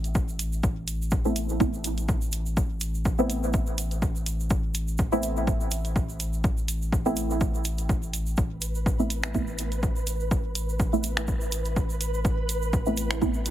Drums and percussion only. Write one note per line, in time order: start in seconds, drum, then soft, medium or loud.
0.04 closed hi-hat soft
0.04 shaker soft
0.15 kick loud
0.15 shaker soft
0.29 shaker soft
0.39 closed hi-hat medium
0.39 shaker medium
0.52 shaker soft
0.63 kick loud
0.63 shaker medium
0.88 closed hi-hat medium
0.88 shaker medium
1.02 shaker soft
1.11 kick loud
1.11 shaker medium
1.25 shaker soft
1.36 closed hi-hat medium
1.36 shaker medium
1.49 shaker soft
1.60 kick loud
1.60 shaker medium
1.74 shaker soft
1.84 closed hi-hat medium
1.84 shaker medium
1.97 closed hi-hat soft
1.97 shaker soft
2.09 kick loud
2.09 shaker soft
2.22 shaker soft
2.32 closed hi-hat medium
2.32 shaker medium
2.46 shaker soft
2.57 kick loud
2.57 shaker medium
2.81 closed hi-hat medium
2.81 shaker medium
2.94 shaker soft
3.05 kick loud
3.05 shaker soft
3.19 shaker soft
3.30 closed hi-hat medium
3.30 shaker medium
3.43 shaker soft
3.53 kick loud
3.53 shaker medium
3.67 shaker soft
3.78 closed hi-hat medium
3.78 shaker medium
3.91 closed hi-hat soft
3.91 shaker soft
4.02 kick loud
4.02 shaker medium
4.16 shaker soft
4.26 closed hi-hat medium
4.26 shaker medium
4.40 shaker soft
4.50 kick loud
4.50 shaker medium
4.74 closed hi-hat medium
4.74 shaker medium
4.88 shaker soft
4.98 kick loud
4.98 shaker medium
5.12 shaker soft
5.23 closed hi-hat medium
5.23 shaker medium
5.37 shaker soft
5.47 kick loud
5.47 shaker medium
5.60 shaker soft
5.71 closed hi-hat medium
5.71 shaker medium
5.85 closed hi-hat soft
5.85 shaker soft
5.96 kick loud
5.96 shaker soft
6.09 shaker soft
6.20 closed hi-hat medium
6.20 shaker medium
6.33 shaker soft
6.44 kick loud
6.44 shaker soft
6.58 shaker soft
6.68 closed hi-hat medium
6.68 shaker medium
6.82 shaker soft
6.92 kick loud
6.92 shaker medium
7.06 shaker soft
7.16 closed hi-hat medium
7.16 shaker medium
7.30 shaker soft
7.41 kick loud
7.41 shaker soft
7.55 shaker soft
7.65 closed hi-hat medium
7.65 shaker medium
7.78 closed hi-hat soft
7.78 shaker soft
7.89 kick loud
7.89 shaker soft
8.03 shaker soft
8.13 closed hi-hat medium
8.13 shaker medium
8.26 shaker soft
8.37 kick loud
8.37 shaker soft
8.62 closed hi-hat medium
8.62 shaker medium
8.75 shaker soft
8.86 kick loud
8.86 shaker medium
8.99 shaker soft
9.10 closed hi-hat medium
9.10 shaker medium
9.23 finger snap medium
9.23 shaker soft
9.34 kick loud
9.34 shaker soft
9.47 shaker soft
9.58 closed hi-hat medium
9.58 shaker medium
9.72 closed hi-hat soft
9.72 shaker soft
9.83 kick loud
9.83 shaker medium
9.96 shaker soft
10.07 closed hi-hat medium
10.07 shaker medium
10.20 shaker soft
10.31 kick loud
10.31 shaker medium
10.55 closed hi-hat medium
10.55 shaker medium
10.69 shaker soft
10.80 kick loud
10.80 shaker medium
10.93 shaker soft
11.04 closed hi-hat medium
11.04 shaker loud
11.17 finger snap medium
11.17 shaker soft
11.28 kick loud
11.28 shaker medium
11.41 shaker soft
11.52 closed hi-hat medium
11.52 shaker loud
11.65 closed hi-hat soft
11.65 shaker soft
11.76 kick loud
11.76 shaker medium
11.90 shaker soft
12.01 closed hi-hat medium
12.01 shaker medium
12.14 shaker soft
12.25 kick loud
12.25 shaker medium
12.49 closed hi-hat medium
12.49 shaker medium
12.62 shaker soft
12.73 kick loud
12.73 shaker medium
12.86 shaker soft
12.97 closed hi-hat medium
12.97 shaker loud
13.11 finger snap medium
13.11 shaker soft
13.22 kick loud
13.22 shaker medium
13.34 shaker soft
13.46 closed hi-hat medium
13.46 shaker loud